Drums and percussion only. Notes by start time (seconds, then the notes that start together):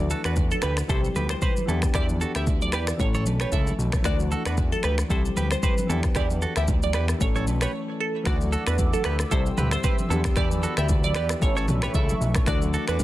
0.10 shaker
0.24 finger snap, cross-stick, shaker
0.36 kick, low conga, shaker
0.51 high conga, shaker
0.62 finger snap, cross-stick, shaker
0.77 finger snap, cross-stick, shaker
0.89 kick, shaker
1.04 high conga, shaker
1.16 high conga, shaker
1.29 finger snap, cross-stick, shaker
1.42 kick, low conga, shaker
1.57 high conga, shaker
1.69 high conga, shaker
1.82 finger snap, kick, cross-stick, shaker
1.94 finger snap, kick, cross-stick, low conga, shaker
2.09 high conga, shaker
2.21 shaker
2.35 finger snap, cross-stick, shaker
2.47 kick, low conga, shaker
2.62 high conga, shaker
2.72 finger snap, cross-stick, shaker
2.87 finger snap, cross-stick, shaker
3.00 kick, shaker
3.14 high conga, shaker
3.26 high conga, shaker
3.40 finger snap, cross-stick, shaker
3.52 kick, low conga, shaker
3.67 high conga, shaker
3.79 high conga, shaker
3.92 finger snap, kick, cross-stick, shaker
4.04 finger snap, kick, cross-stick, low conga, shaker
4.20 high conga, shaker
4.32 shaker
4.45 finger snap, cross-stick, shaker
4.58 kick, low conga, shaker
4.72 high conga, shaker
4.83 finger snap, cross-stick, shaker
4.98 finger snap, cross-stick, shaker
5.10 kick, shaker
5.25 high conga, shaker
5.37 high conga, shaker
5.51 finger snap, cross-stick, shaker
5.63 kick, low conga, shaker
5.78 high conga, shaker
5.90 high conga, shaker
6.03 finger snap, kick, cross-stick, shaker
6.15 finger snap, kick, cross-stick, low conga, shaker
6.30 high conga, shaker
6.42 shaker
6.56 finger snap, cross-stick, shaker
6.68 kick, low conga, shaker
6.83 high conga, shaker
6.93 finger snap, cross-stick, shaker
7.08 finger snap, cross-stick, shaker
7.21 kick, shaker
7.36 high conga, shaker
7.47 high conga, shaker
7.61 finger snap, cross-stick, shaker
8.25 finger snap, kick, cross-stick, low conga, shaker
8.41 high conga, shaker
8.53 shaker
8.67 finger snap, cross-stick, shaker
8.79 kick, low conga, shaker
8.93 high conga, shaker
9.04 finger snap, cross-stick, shaker
9.19 finger snap, cross-stick, shaker
9.31 kick, shaker
9.46 shaker
9.58 mid tom, high conga, shaker
9.71 finger snap, cross-stick, shaker
9.84 kick, low conga, shaker
9.99 high conga, shaker
10.11 high conga, shaker
10.24 finger snap, kick, cross-stick, shaker
10.36 finger snap, kick, cross-stick, low conga, shaker
10.51 high conga, shaker
10.63 shaker
10.77 finger snap, cross-stick, shaker
10.89 kick, low conga, shaker
11.04 high conga, shaker
11.14 finger snap, cross-stick, shaker
11.29 finger snap, cross-stick, shaker
11.42 kick, shaker
11.57 shaker
11.68 mid tom, high conga, shaker
11.82 finger snap, cross-stick, shaker
11.94 kick, low conga, shaker
12.09 high conga, shaker
12.22 high conga, shaker
12.35 finger snap, kick, cross-stick, shaker
12.46 finger snap, kick, cross-stick, low conga, shaker
12.62 high conga, shaker
12.74 shaker
12.88 finger snap, cross-stick, shaker
13.00 kick, low conga, shaker